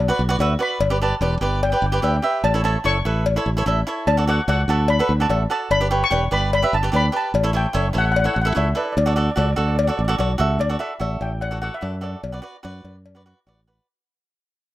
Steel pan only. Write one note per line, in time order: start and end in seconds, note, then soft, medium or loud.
0.63 1.03 B5 medium
1.03 1.40 A5 loud
1.63 1.69 G5 medium
1.70 1.76 G5 medium
1.77 1.85 G5 medium
1.86 1.92 G5 medium
1.94 1.99 G5 medium
2.00 2.07 G5 soft
2.08 2.15 G5 medium
2.16 2.22 G5 medium
2.23 2.30 G5 medium
2.31 2.38 G5 medium
2.44 2.64 A5 loud
2.65 2.84 A5 loud
2.86 3.23 C#6 loud
4.07 4.28 A5 loud
4.30 4.48 F#5 medium
4.49 4.70 F#5 loud
4.70 4.90 A5 loud
4.90 5.21 B5 loud
5.22 5.50 A5 loud
5.51 5.72 A5 loud
5.71 6.03 B5 loud
6.04 6.34 C#6 loud
6.33 6.53 B5 loud
6.55 6.74 B5 loud
6.74 6.94 A5 loud
6.96 7.16 B5 loud
7.17 7.57 A5 loud
7.57 7.93 G5 medium
7.98 8.04 F#5 loud
8.05 8.11 F#5 medium
8.12 8.18 F#5 loud
8.19 8.24 F#5 medium
8.25 8.32 F#5 medium
8.34 8.40 F#5 medium
8.42 8.48 F#5 medium
8.57 8.75 E5 medium
8.77 8.84 D5 medium
8.85 8.91 D5 medium
8.92 8.99 D5 medium
9.01 9.07 D5 medium
9.08 9.14 D5 medium
9.16 9.22 D5 medium
9.24 9.30 D5 medium
9.31 9.37 D5 medium
9.40 9.45 D5 medium
9.46 9.51 D5 medium
9.53 9.59 D5 medium
9.61 9.67 D5 soft
9.68 9.74 D5 medium
9.75 9.81 D5 medium
9.83 9.88 D5 medium
9.89 9.96 D5 medium
9.97 10.03 D5 medium
10.05 10.11 D5 medium
10.60 10.81 D5 medium
10.80 11.18 E5 medium
11.22 11.43 G5 medium
11.41 11.61 F#5 medium
11.62 11.73 F#5 medium
11.74 12.02 E5 medium
12.03 13.43 D5 medium